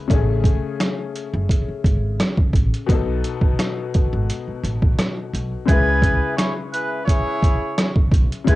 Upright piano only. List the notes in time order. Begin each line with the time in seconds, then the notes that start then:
Already playing: C#3 G#3 E4 B4
0.08 C#3 A3
0.13 C#4 G#4
2.86 B2 B3
2.91 D#4 A4
5.66 C#3 G#3
5.71 E4 B4
8.44 C#3 G#3
8.49 E4 G#4